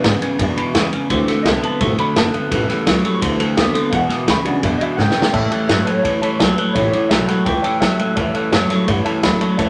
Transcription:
Already playing: D4 B4
0.04 E2 G#2 C#3 E3 G#3 D4 E4 B4, kick, snare, ride
0.21 E2 C#3 D4 E4 B4, muted upright bass stroke, ride
0.38 E2 F#2 B2 F#3 G#3 D4 E4 B4, kick, ride
0.56 E2 B2 D4 E4 B4, muted upright bass stroke, ride
0.74 E2 C#3 E3 G#3 D4 E4 B4, snare, ride
0.92 E2 C#3 D4 E4 B4, muted upright bass stroke, ride
1.10 D2 D3 E3 F#3 A3 C4 F#4 A4, kick, ride
1.27 D3 A3 C4 F#4 A4, muted upright bass stroke, snare, ride
1.43 C2 D3 A3 B3 C4 D#5, kick, snare, ride
1.47 F#4 A4 E5
1.62 D3 B3 C4 F#4 A4 A5, muted upright bass stroke, ride
1.80 A1 D3 E3 F#3 A3 C4 F#4 A4, kick, ride
1.98 D3 A3 C4 F#4 A4 B5, muted upright bass stroke, ride
2.16 F#1 D3 A3 B3 C4 F#4 A4 E5 A5, snare, ride
2.33 D3 B3 C4 F#4 A4, muted upright bass stroke, ride
2.50 A1 A2 C#3 E3 G3 B3 C#4 G4 A4, kick, ride
2.69 A2 E3 G3 C#4 G4 A4, muted upright bass stroke, snare, ride
2.86 C#2 A2 E3 F#3 G3 C#4 G4 A4, kick, snare, ride
3.04 A2 F#3 G3 C#4 G4 A4, muted upright bass stroke, ride
3.21 D2 D3 E3 F#3 A3 C4 F#4 A4, kick, ride
3.40 D3 A3 C4 F#4 A4, muted upright bass stroke, ride
3.57 D#2 D3 A3 B3 C4 F#4 A4, snare, ride
3.74 D3 B3 C4 A4, muted upright bass stroke, ride
3.90 E2 B2 E3 G#3 D4 F5, kick, ride
3.94 E4 B4 F#5
4.09 E2 B2 D4 E4 B4, muted upright bass stroke, snare, ride
4.27 D2 E2 C#3 E3 G#3 D4 E4 B4 B5, kick, snare, ride
4.44 E2 C#3 F#3 G#3 D4 E4 B4 F#5, muted upright bass stroke, ride
4.62 E2 F#2 B2 G#3 B4 E5, kick, ride
4.78 E2 B2 E4 B4 D#5, muted upright bass stroke, ride
4.82 D4 E5
4.97 E2 G#2 C#3 E3 G#3 D4 E4 B4 G5, snare
5.10 snare
5.16 E2 C#3 D4 E4 B4, muted upright bass stroke
5.22 snare
5.33 A2 E3 G3 C#4 E4 A4 C#5 E5 A5, kick, crash
5.50 A2 E3 G3 C#4 E4 A4 C#5 E5 A5, ride
5.68 G2 A2 E3 F#3 G3 C#4 E4 A4 C#5 E5 A5, snare, ride
5.85 A2 F#3 C#4 E4 A4 C#5 E5 A5, muted upright bass stroke, ride
5.90 G3
6.02 E2 A2 E3 G3 C#4 E4 C#5 E5 A5, kick, ride
6.07 A4
6.21 A2 E3 G3 C#4 E4 A4 C#5 E5 A5, muted upright bass stroke, ride
6.39 C#2 A2 E3 F#3 G3 C#4 E4 A4 C#5 E5 A5, kick, snare, ride
6.55 A2 F#3 E4 A4 B4 C#5 E5 A5, muted upright bass stroke, ride
6.60 G3 C#4
6.73 A1 A2 E3 G3 C#4 E4 C#5 E5 G5, kick, ride
6.78 A4
6.91 A2 E3 C#4 E4 A4 C#5 E5 F#5, muted upright bass stroke, ride
6.96 G3
7.09 B1 A2 F#3 G3 C#4 E4 C#5 E5 A5, snare, ride
7.13 A4
7.27 A2 F#3 C#4 E4 A4 C#5 E5 F#5 A5, muted upright bass stroke, snare, ride
7.31 G3
7.45 C#2 A2 E3 C#4 E4 C#5 E5 G5 A5, kick, ride
7.50 A4
7.62 A2 E3 C#4 E4 A4 C#5 E5 A5, muted upright bass stroke, ride
7.67 G3
7.80 D2 A2 E3 F#3 G3 C#4 E4 A4 C#5 E5 A5, kick, snare, ride
7.98 A2 F#3 C#4 E4 A4 C#5 E5 A5, muted upright bass stroke, ride
8.02 G3
8.16 E2 A2 E3 G3 C#4 E4 A4 C#5 E5 A5, kick, ride
8.34 A2 E3 G3 C#4 E4 A4 C#5 E5 A5, ride
8.52 F#2 A2 E3 F#3 G3 C#4 E4 A4 C#5 E5 A5, snare, ride
8.70 A2 F#3 G3 C#4 E4 A4 C#5 E5 A5, muted upright bass stroke, snare, ride
8.88 G2 A2 E3 G3 C#4 E4 A4 C#5 E5 F#5, kick, ride
9.05 A2 E3 C#4 E4 A4 C#5 E5 A5, muted upright bass stroke, ride
9.09 G3
9.23 D2 A2 E3 F#3 G3 C#4 E4 A4 C#5 E5 B5, kick, snare, ride
9.41 A2 F#3 G3 C#4 E4 A4 C#5 E5 A5, muted upright bass stroke, ride
9.57 E2 A2 E3 G3 C#4 E4 C#5 E5 A5, kick, ride
9.62 A4

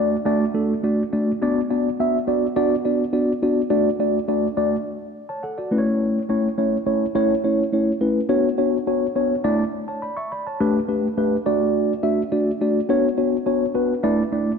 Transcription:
Already playing: A3 D4 F#4 D5
0.25 A3 D4 F#4 D5
0.54 A3 D4 F#4 A4
0.83 A3 D4 F#4 D5
1.13 A3 D4 F#4 D5
1.42 B3 D4 F#4 D5
1.70 B3 D4 F#4 D5
2.00 B3 D4 F#4 E5
2.27 B3 D4 F#4 D5
2.56 B3 D4 F#4 D5
2.85 B3 D4 F#4 D5
3.13 B3 D4 F#4 D5
3.42 B3 D4 F#4 D5
3.70 A3 D4 F#4 D5
3.99 A3 D4 F#4 D5
4.28 A3 D4 F#4 D5
4.57 A3 D4 F#4 D5
5.29 C#5 A5
5.43 A4 F#5
5.58 F#4 D5
5.71 A3 C#4 E4 B4
5.78 C#5
6.29 A3 C#4 E4 C#5
6.58 A3 C#4 E4 C#5
6.86 A3 C#4 E4 C#5
7.15 A3 C#4 E4 C#5
7.44 A3 C#4 E4 C#5
7.72 A3 C#4 E4 C#5
8.01 A3 C#4 E4 B4
8.29 B3 D4 F#4 C#5
8.58 B3 D4 F#4 C#5
8.87 B3 D4 F#4 C#5
9.16 B3 D4 F#4 C#5
9.44 A3 D4 E4 D5
9.88 C#5 A5
10.02 D5 B5
10.17 E5 C#6
10.32 D5 B5
10.47 C#5 A5
10.61 A3 D4 G4 B4
10.88 A3 D4 G4 B4
11.17 A3 D4 G4 B4
11.46 A3 D4 F#4 D5
12.03 A3 D4 F#4 E5
12.32 A3 D4 F#4 D5
12.61 A3 D4 F#4 D5
12.89 B3 D4 F#4 C#5
13.17 B3 D4 F#4 C#5
13.46 B3 D4 F#4 C#5
13.74 B3 D4 F#4 B4
14.03 A3 D4 E4 D5
14.32 A3 D4 E4 D5

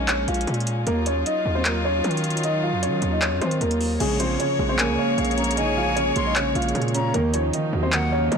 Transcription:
Already playing: A#1 G#3 A#3 C#4
0.08 C#4 C#5, clap, closed hi-hat
0.28 A#1 F4 F5, closed hi-hat
0.34 closed hi-hat
0.41 closed hi-hat
0.47 A#2, closed hi-hat
0.54 closed hi-hat
0.60 closed hi-hat
0.67 closed hi-hat
0.87 D#2 F#3 A#3 D#4 F4 A#4, closed hi-hat
1.06 C#4 C#5, closed hi-hat
1.26 D#4 D#5, closed hi-hat
1.46 D#2
1.55 C4 C5
1.65 A#3 A#4, clap, closed hi-hat
1.85 C#4 C#5
2.04 D#3, closed hi-hat
2.11 closed hi-hat
2.17 closed hi-hat
2.24 closed hi-hat
2.30 closed hi-hat
2.37 closed hi-hat
2.43 D#4 D#5, closed hi-hat
2.63 F4 F5
2.73 F2
2.83 C#4 C#5, closed hi-hat
2.88 D#3
3.02 D#2, closed hi-hat
3.12 D#4 D#5
3.22 C#4 C#5, clap, closed hi-hat
3.32 F2
3.41 D#3 C4 C5, closed hi-hat
3.51 closed hi-hat
3.61 D#2 A#3 A#4, closed hi-hat
3.71 closed hi-hat
3.81 open hi-hat
4.00 A#1 C#3 G#3 A#3 G#4 C#5, closed hi-hat, crash
4.20 F3 C4 C5, closed hi-hat
4.40 C#3 C#4 C#5, closed hi-hat
4.59 A#1 G#3
4.69 C4 C5
4.79 C#3 A#3 A#4 G#5, clap, closed hi-hat
4.89 C#2
4.98 A#3 C#4 C#5
5.18 A#1 C#3 F5, closed hi-hat
5.25 closed hi-hat
5.31 closed hi-hat
5.37 C#4 A#5, closed hi-hat
5.44 closed hi-hat
5.51 closed hi-hat
5.57 C#3 D#4 D#5 G#5, closed hi-hat
5.77 F3 F4 F5
5.96 C#3 C#4 C#5, closed hi-hat
6.16 A#1 G#3 C6, closed hi-hat
6.26 D#4 D#5
6.36 C#3 C#4 C#5, clap, closed hi-hat
6.55 A#1 A#3 F4 F5, closed hi-hat
6.62 closed hi-hat
6.69 closed hi-hat
6.75 A#2 C#3, closed hi-hat
6.82 closed hi-hat
6.88 closed hi-hat
6.94 C#4 A#5, closed hi-hat
7.14 D#2 D#3 A#3 D#4 A#4, closed hi-hat
7.34 F3 C#4 C#5, closed hi-hat
7.53 D#3 D#4 D#5, closed hi-hat
7.73 D#2 F#3
7.83 C4 C5
7.92 D#3 A#3 A#4 F#5, clap, closed hi-hat
8.12 A#3 C#4 C#5
8.32 D#3 D#5, closed hi-hat

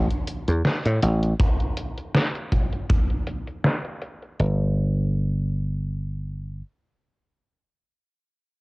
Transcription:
0.10 closed hi-hat
0.27 closed hi-hat
0.48 E2, closed hi-hat
0.65 snare, closed hi-hat
0.85 A2, closed hi-hat
1.02 A1, closed hi-hat
1.23 closed hi-hat
1.40 kick, closed hi-hat
1.60 closed hi-hat
1.77 closed hi-hat
1.98 closed hi-hat
2.15 snare, closed hi-hat
2.35 closed hi-hat
2.52 kick, closed hi-hat
2.73 closed hi-hat
2.90 kick, closed hi-hat
3.10 closed hi-hat
3.27 closed hi-hat
3.48 closed hi-hat
3.65 snare, closed hi-hat
3.85 closed hi-hat
4.02 closed hi-hat
4.23 closed hi-hat
4.40 G1

